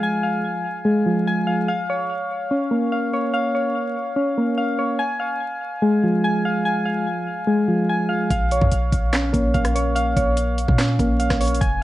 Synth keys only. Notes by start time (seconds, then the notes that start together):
Already playing: F3 G#3 F5
0.03 G#5
0.23 F5
0.85 G#3
1.06 F3
1.27 G#5
1.47 F5
1.68 F5
1.90 C#5
2.51 C#4
2.71 A#3
2.92 F5
3.13 C#5
3.34 F5
3.55 C#5
4.16 C#4
4.38 A#3
4.58 F5
4.79 C#5
4.99 G#5
5.20 F5
5.82 G#3
6.04 F3
6.24 G#5
6.45 F5
6.65 G#5
6.85 F5
7.47 G#3
7.68 F3
7.89 G#5
8.09 F5
8.30 F5
8.52 C#5
9.13 C#4
9.33 A#3
9.54 F5
9.75 C#5
9.95 F5
10.17 C#5
10.78 C#4
11.00 A#3
11.20 F5
11.41 C#5
11.61 G#5